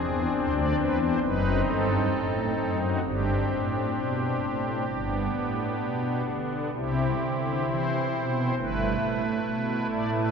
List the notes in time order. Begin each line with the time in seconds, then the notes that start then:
Already playing: E2 C4 D4 G#4
0.35 D2 C5
0.56 D5
0.78 E2 B4
0.99 C5
1.22 F#1 F#2 C4 D#4 B4
1.67 G2 A4
2.13 A2
2.58 F#2
2.81 F#4
3.04 G1 G2 C4 D4 G4
3.50 A2
3.95 B2
4.42 A2
4.89 G1 G2 B3 D4
5.35 A2
5.82 B2
6.28 D3
6.74 C2 C3 C4 E4 G4
7.21 D3
7.68 E3 C5
8.13 B2
8.57 G1 G2 A3 E4 B4
9.01 A2
9.45 B2
9.91 A2 D5
10.12 B4